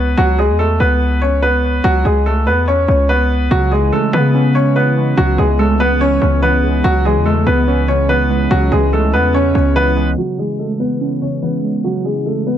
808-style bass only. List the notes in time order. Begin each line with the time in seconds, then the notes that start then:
Already playing: C#2
0.18 C#2
0.49 E2
0.80 C#2
1.84 C#2
2.05 C#2
2.47 E2
2.88 C#2
3.51 C#2
4.13 C#3
5.18 C#2
5.38 C#2
6.22 C#2
6.84 C#2
7.16 E2
7.47 C#2
8.51 C#2
8.72 C#2
9.13 E2
9.55 C#2